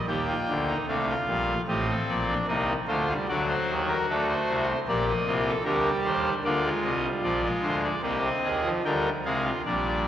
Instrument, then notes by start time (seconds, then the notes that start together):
pipe organ
0.07 D#2 D#3 A#3 G4 G5
0.28 F4
0.48 D2 D3
0.67 D#4
0.88 C2 C3 A3 D4 F5
1.09 F4
1.28 A#1 A#2 G3
1.68 A1 A2 C4 G4 D#5
1.89 A4
2.09 A#1 A#2 D5
2.29 D4
2.47 C2 C3 A#3 D#4 D#5
2.87 D2 D3 A3 F4 C5
3.09 G3
3.28 D2 D3 F#3 F#4 D5
3.48 C5
3.69 D#2 D#3
3.89 A#4
4.09 D2 D3 A3 A4
4.29 C5
4.48 C2 C3
4.88 A#1 A#2 A#3 G4 D5
5.08 D#5
5.26 C2 C3 F4
5.46 A4
5.64 D2 D3 G3 G4 A#4
6.04 D#2 D#3 C5
6.44 D2 D3 A#3 F4 D5
6.65 G#3
6.84 C2 C3 D#5
7.04 G3
7.23 A#1 A#2 F3 D5
7.43 G#3
7.63 D2 D3 C5
7.84 D5
8.03 C2 C3 A#3 G4 D#5
8.24 C4
8.44 D#2 D#3 G#4
8.64 F3
8.84 D2 D3 G3 A#4 G5
9.25 C2 C3 G#3 G#4 F5
9.45 F4
9.65 A#1 A#2 G3 D4 D5